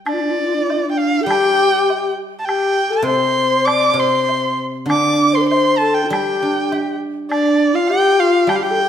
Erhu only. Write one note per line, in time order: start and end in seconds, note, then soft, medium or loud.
0.09 0.89 D5 medium
0.91 0.99 G5 medium
0.98 1.25 F5 medium
1.25 2.12 G5 medium
2.39 2.46 A5 medium
2.45 2.94 G5 medium
2.92 3.05 A5 medium
3.06 3.67 C6 medium
3.66 4.01 D6 medium
4.00 4.60 C6 medium
4.90 5.36 D6 medium
5.35 5.48 C6 medium
5.48 5.79 C6 medium
5.78 5.96 A5 medium
5.94 6.10 G5 medium
6.11 6.96 G5 medium
7.31 7.77 D5 medium
7.75 7.89 F5 medium
7.88 8.21 G5 loud
8.20 8.50 F5 medium
8.49 8.57 G5 medium
8.56 8.64 F5 medium
8.62 8.89 G5 medium